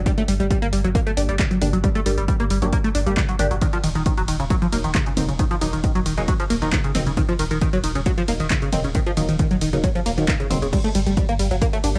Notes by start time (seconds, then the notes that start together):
0.06 G3, kick, closed hi-hat
0.18 A3, closed hi-hat
0.28 G1 G3, open hi-hat
0.40 G1 G3, closed hi-hat
0.50 G3, kick, closed hi-hat
0.62 G1 A#3, closed hi-hat
0.73 G1 G3, open hi-hat
0.84 G1 F#3, closed hi-hat
0.95 A#3, kick, closed hi-hat
1.07 A3, closed hi-hat
1.17 G1 A#3 D4 G4, open hi-hat
1.29 G1 G3, closed hi-hat
1.39 G3, kick, clap, closed hi-hat, mid tom
1.51 F#3, closed hi-hat
1.61 G1 A#3 D4 G4, open hi-hat, mid tom
1.73 G1 F#3, closed hi-hat
1.84 G3, kick, closed hi-hat
1.95 A3, closed hi-hat
2.06 G1 G3 A#3 D4 G4, open hi-hat
2.18 G1 G3, closed hi-hat
2.28 G3, kick, closed hi-hat
2.40 G1 A#3, closed hi-hat
2.50 G1 G3, open hi-hat
2.62 G1 F#3 A#3 D4 G4, closed hi-hat
2.73 A#3, kick, closed hi-hat
2.84 A3, closed hi-hat
2.95 G1 D4, open hi-hat
3.06 G1 G3 A#3 D4 G4, closed hi-hat
3.17 G3, kick, clap, open hi-hat, mid tom
3.29 F#3, closed hi-hat
3.39 G1 A#3 D4 G4, open hi-hat, mid tom
3.51 G1 F#3, closed hi-hat
3.61 D#3, kick, closed hi-hat, ride
3.73 F3, closed hi-hat
3.84 D#1 D#3, open hi-hat, ride
3.95 D#1 D#3, closed hi-hat
4.06 D#3, kick, closed hi-hat, ride
4.17 D#1 F#3, closed hi-hat
4.28 D#1 D#3, open hi-hat, ride
4.40 D#1 C#3, closed hi-hat
4.50 F#3, kick, closed hi-hat, ride
4.62 F3, closed hi-hat
4.72 D#1 F#3 A#3 D#4, open hi-hat, ride
4.84 D#1 D#3, closed hi-hat
4.95 D#3, kick, clap, closed hi-hat, mid tom, ride
5.06 C#3, closed hi-hat
5.17 D#1 F#3 A#3 C4 D#4, open hi-hat, mid tom, ride
5.29 D#1 C#3, closed hi-hat
5.39 D#3, kick, closed hi-hat, ride
5.51 F3, closed hi-hat
5.61 D#1 D#3 F#3 A#3 D#4, open hi-hat, ride
5.73 D#1 D#3, closed hi-hat
5.84 D#3, kick, closed hi-hat, ride
5.95 D#1 F#3, closed hi-hat
6.06 D#1 D#3, open hi-hat, ride
6.18 D#1 C#3 F#3 A#3 D#4, closed hi-hat
6.28 F#3, kick, closed hi-hat, ride
6.40 F3, closed hi-hat
6.50 D#1 A#3, open hi-hat, ride
6.62 D#1 D#3 F#3 A#3 D#4, closed hi-hat
6.73 D#3, kick, clap, open hi-hat, mid tom, ride
6.84 C#3, closed hi-hat
6.95 D#1 F#3 A#3 C4 D#4, open hi-hat, mid tom, ride
7.06 D#1 C#3, closed hi-hat
7.17 D#3, kick, closed hi-hat, ride
7.29 F3, closed hi-hat
7.39 D#1 D#3, open hi-hat, ride
7.51 D#1 D#3, closed hi-hat
7.61 D#3, kick, closed hi-hat, ride
7.73 D#1 F#3, closed hi-hat
7.84 D#1 D#3, open hi-hat, ride
7.95 D#1 C#3, closed hi-hat
8.06 F#3, kick, closed hi-hat, ride
8.18 F3, closed hi-hat
8.28 D#1 F#3 A#3 D#4, open hi-hat, ride
8.40 D#1 D#3, closed hi-hat
8.50 D#3, kick, clap, closed hi-hat, mid tom, ride
8.62 C#3, closed hi-hat
8.72 D#1 F#3 A#3 C4 D#4, open hi-hat, mid tom, ride
8.84 D#1 C#3, closed hi-hat
8.95 D#3, kick, closed hi-hat, ride
9.06 F3, closed hi-hat
9.17 D#1 D#3 F#3 A#3 D#4, open hi-hat, ride
9.29 D#1 D#3, closed hi-hat
9.39 D#3, kick, closed hi-hat, ride
9.51 D#1 F#3, closed hi-hat
9.61 D#1 D#3, open hi-hat, ride
9.73 D#1 C#3 F#3 A#3 D#4, closed hi-hat
9.84 F#3, kick, closed hi-hat, ride
9.95 F3, closed hi-hat
10.06 D#1 A#3, open hi-hat, ride
10.18 D#1 D#3 F#3 A#3 D#4, closed hi-hat
10.28 D#3, kick, clap, open hi-hat, mid tom, ride
10.40 C#3, closed hi-hat
10.50 D#1 F#3 A#3 C4 D#4, open hi-hat, mid tom, ride
10.62 D#1 C#3, closed hi-hat
10.73 G3, kick, closed hi-hat, crash, ride
10.84 A3, closed hi-hat
10.95 G1 G3, open hi-hat, ride
11.06 G1 G3, closed hi-hat
11.17 G3, kick, closed hi-hat, ride
11.29 G1 A#3, closed hi-hat
11.39 G1 G3, open hi-hat, ride
11.51 G1 F#3, closed hi-hat
11.62 A#3, kick, closed hi-hat, ride
11.73 A3, closed hi-hat
11.84 G1 A#3 D4 G4, open hi-hat, ride
11.95 G1 G3, closed hi-hat